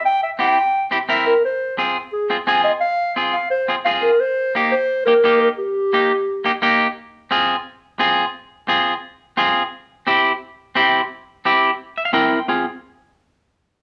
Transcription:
<<
  \new Staff \with { instrumentName = "Clarinet" } { \time 4/4 \key c \minor \tempo 4 = 174 g''8 e''8 g''4. r8 e''8 bes'8 | c''4 r4 aes'8 r8 aes''8 ees''8 | f''4 r8 f''8 c''8 r8 f''8 bes'8 | c''4 r8 c''4 bes'4 bes'8 |
g'2. r4 | r1 | r1 | r1 |
r1 | r1 | }
  \new Staff \with { instrumentName = "Clean electric guitar" } { \time 4/4 \key c \minor << { r1 | r1 | r1 | r1 |
r1 | r1 | r1 | r1 |
r2 r8 e''16 f''16 g''4 | r1 | } \\ { r4 <c' e' g'>8 r4 <c' e' g'>8 <c' e' bes'>8 r8 | r4 <c' f' aes'>8 r4 <c' f' aes'>8 <c' f' aes'>8 r8 | r4 <c' f' aes'>8 r4 <c' f' aes'>8 <c' f' aes'>8 r8 | r4 <bes ees' g'>8 r4 <bes ees' g'>8 <bes ees' g'>8 r8 |
r4 <bes ees' g'>8 r4 <bes ees' g'>8 <bes ees' g'>8 r8 | r4 <c' f' aes'>8 r4. <c' f' aes'>8 r8 | r4 <c' f' aes'>8 r4. <c' f' aes'>8 r8 | r4 <c' e' g'>8 r4. <c' e' g'>8 r8 |
r4 <c' e' g'>8 r4. <c' e' bes'>8 r8 | <c' f' aes'>8 r2. r8 | } >> }
>>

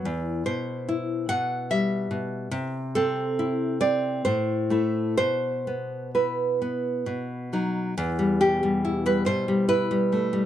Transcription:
\new Staff \with { instrumentName = "Nylon-string guitar" } { \time 3/4 \key e \minor \tempo 4 = 70 << { r8 c''4 fis''8 e''4 | r8 a'4 d''8 c''4 | c''4 b'4. r8 | r8 g'8. b'16 c''8 b'4 | } \\ { e,8 b,8 e'8 b,8 g8 b,8 | c8 c'8 e'8 c'8 a,8 <a e'>8 | b,8 b8 e'8 b8 b,8 <fis dis'>8 | e,16 g16 b,16 g16 e'16 g16 b,16 g16 e'16 g16 a16 g16 | } >> }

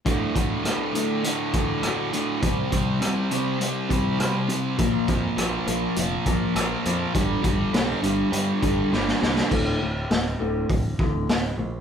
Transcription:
<<
  \new Staff \with { instrumentName = "Distorted electric guitar" } { \clef bass \time 4/4 \key d \minor \tempo 4 = 102 <d, a, d>8 <d, a, d>8 <d, a, d>8 <d, a, d>8 <d, a, d>8 <d, a, d>8 <d, a, d>8 <d, a, d>8 | <c g c'>8 <c g c'>8 <c g c'>8 <c g c'>8 <c g c'>8 <c g c'>8 <c g c'>8 <c g c'>8 | <bes, f bes>8 <bes, f bes>8 <bes, f bes>8 <bes, f bes>8 <bes, f bes>8 <bes, f bes>8 <bes, f bes>8 <bes, f bes>8 | <g, d g>8 <g, d g>8 <g, d g>8 <g, d g>8 <g, d g>8 <g, d g>8 <g, d g>8 <g, d g>8 |
r1 | }
  \new Staff \with { instrumentName = "Clean electric guitar" } { \clef bass \time 4/4 \key d \minor <d, a, d>8 <d, a,>8 <d, a,>8 <d, a, d>8 <d, a,>8 <d, a, d>8 <d, a,>8 <d, a,>8 | <c g c'>8 <c g>8 <c g>8 <c g c'>8 <c g>8 <c g c'>8 <c g>8 <c g>8 | <bes, f bes>8 <bes, f>8 <bes, f>8 <bes, f bes>8 <bes, f>8 <bes, f bes>8 <bes, f>8 <bes, f>8 | <g, d g>8 <g, d>8 <g, d>8 <g, d g>8 <g, d>8 <g, d g>8 <g, d>8 <g, d>8 |
<d, a, d>8 <d, a,>8 <d, a,>8 <d, a, d>8 <d, a,>8 <d, a, d>8 <d, a,>8 <d, a,>8 | }
  \new Staff \with { instrumentName = "Picked electric bass" } { \clef bass \time 4/4 \key d \minor r1 | r1 | bes,,8 f,8 bes,,8 bes,,8 f,,8 bes,,8 bes,,8 f,8 | g,,8 g,,8 b,,8 g,,8 g,8 g,,8 g,,8 c,8 |
d,,8 d,,8 d,,8 d,,8 d,,8 d,,8 d,,8 bes,,8 | }
  \new DrumStaff \with { instrumentName = "Drums" } \drummode { \time 4/4 <hh bd>8 <hh bd>8 <hh ss>8 hh8 hh8 <hh bd>8 <hh ss>8 hh8 | <hh bd>8 <hh bd>8 <hh ss>8 hh8 hh8 <hh bd>8 <hh ss>8 hh8 | <hh bd>8 <hh bd>8 <hh ss>8 hh8 hh8 <hh bd>8 <hh ss>8 hh8 | <hh bd>8 <hh bd>8 <hh sn>8 hh8 hh8 <hh bd>8 sn16 sn16 sn16 sn16 |
<cymc bd>4 <hho sn>4 <hho bd>8 bd8 <hho sn>4 | }
>>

